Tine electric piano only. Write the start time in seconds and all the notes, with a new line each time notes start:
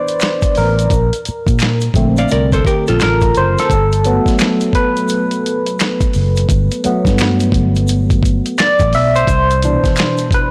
Already playing: E3 B3 D4 B4 C5 D5
0.58 A#4
1.95 D3 A3 C4
3.03 A#4
3.37 C5
3.60 A4
4.05 F#3 A3 B3
4.75 B4
6.84 F#3 A3 B3
8.58 D5
8.95 E5
9.16 C5
9.64 B2 E3 D4
10.34 B4